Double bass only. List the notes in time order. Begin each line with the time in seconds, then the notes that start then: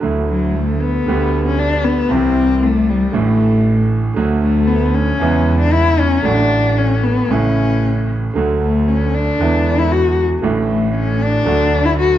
0.03 D2
1.08 D2
2.11 C2
3.15 A1
4.17 D2
5.20 E2
6.25 A1
7.29 A1
8.35 D2
9.39 E2
10.43 A1
11.47 D2